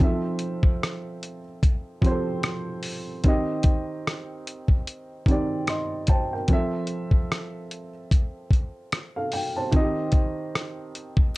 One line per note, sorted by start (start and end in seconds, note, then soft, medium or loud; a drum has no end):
0.00 1.40 F3 medium
0.00 1.41 C4 medium
0.00 0.22 D#4 medium
0.00 1.42 A4 medium
0.00 0.21 C5 medium
0.00 1.42 E5 medium
0.00 kick loud
0.39 closed hi-hat medium
0.63 kick medium
0.83 cross-stick loud
0.83 closed hi-hat medium
1.23 closed hi-hat medium
1.63 kick medium
1.63 closed hi-hat loud
2.01 3.08 F3 medium
2.01 3.09 C4 medium
2.01 2.11 G4 medium
2.01 kick medium
2.01 closed hi-hat medium
2.06 3.11 C5 medium
2.11 3.13 A4 medium
2.43 cross-stick loud
2.43 closed hi-hat medium
2.83 open hi-hat medium
3.24 4.65 D#3 medium
3.24 4.65 C4 medium
3.24 4.66 G4 medium
3.24 kick loud
3.24 closed hi-hat medium
3.28 4.67 D#5 medium
3.63 kick medium
3.63 closed hi-hat medium
4.07 cross-stick loud
4.07 closed hi-hat medium
4.47 closed hi-hat medium
4.68 kick medium
4.87 closed hi-hat loud
5.26 6.33 D#3 medium
5.26 6.34 C4 medium
5.26 6.34 G4 medium
5.26 kick medium
5.26 closed hi-hat medium
5.31 5.70 D5 medium
5.67 6.07 D#5 medium
5.67 6.07 C6 medium
5.67 cross-stick loud
5.67 closed hi-hat medium
6.07 6.31 C5 medium
6.07 6.31 G5 medium
6.07 6.30 A5 medium
6.07 kick medium
6.07 closed hi-hat medium
6.33 6.71 A#4 soft
6.33 6.70 G5 medium
6.48 7.89 F3 medium
6.48 7.90 C4 medium
6.48 7.91 A4 medium
6.48 kick loud
6.48 closed hi-hat medium
6.53 7.91 E5 loud
6.87 closed hi-hat medium
7.11 kick medium
7.32 cross-stick loud
7.32 closed hi-hat medium
7.71 closed hi-hat medium
8.11 kick loud
8.11 closed hi-hat loud
8.51 kick medium
8.51 closed hi-hat medium
8.92 cross-stick loud
8.92 closed hi-hat medium
9.16 9.33 A4 medium
9.16 9.32 F5 medium
9.32 9.54 G5 medium
9.32 open hi-hat medium
9.56 9.95 C5 medium
9.56 9.94 A5 medium
9.71 11.13 D#3 medium
9.71 11.14 C4 medium
9.71 9.81 F4 medium
9.71 kick loud
9.71 closed hi-hat medium
9.76 11.15 D#5 loud
9.81 11.18 G4 medium
10.12 kick medium
10.12 closed hi-hat medium
10.55 cross-stick loud
10.55 closed hi-hat medium
10.95 closed hi-hat medium
11.17 kick medium